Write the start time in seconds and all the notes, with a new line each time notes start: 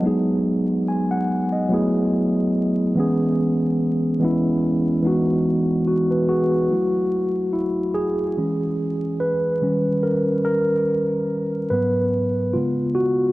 0.02 F#3 G#3 B3 D#4
0.07 G#4
0.88 G#5
1.11 F#5
1.52 D#5
1.69 F#3 A3 B3 E4
1.74 G#4
2.95 E3 G#3 B3 C#4
3.00 G#4
4.19 E3 G#3 B3 C#4
4.24 E4
5.02 E3 G#3 B3 D#4
5.07 F#4
5.87 F#4
6.11 B4
6.29 F#4 G#4
6.52 F#4
6.70 F#3 A3 E4
7.53 E4
7.94 G#4
8.37 E3 G#3 C#4
9.20 B4
9.62 D#3 G3 C#4
10.03 A#4
10.45 A#4
11.70 G#2 F#3 B3 B4
12.53 C#3 G#3 B3 F4
12.95 F#4